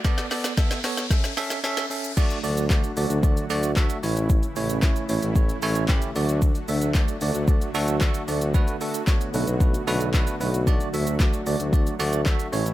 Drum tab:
CC |----------------|x---------------|----------------|----------------|
HH |-xox-xox-xox-xox|-xox-xox-xox-xox|-xox-xox-xox-xox|-xox-xox-xox-xox|
SH |xxxxxxxxxxxxxxxx|xxxxxxxxxxxxxxxx|xxxxxxxxxxxxxxxx|xxxxxxxxxxxxxxxx|
CP |----------------|----x-------x---|----x-------x---|----x-------x---|
SD |oooooooooooooo--|----o-------o---|----o-------o---|----o-------o---|
BD |o---o---o-------|o---o---o---o---|o---o---o---o---|o---o---o---o---|

CC |----------------|----------------|
HH |-xox-xox-xox-xox|-xox-xox-xox-xox|
SH |xxxxxxxxxxxxxxxx|xxxxxxxxxxxxxxxx|
CP |----x-------x---|----x-------x---|
SD |----o-------o---|----o-------o---|
BD |o---o---o---o---|o---o---o---o---|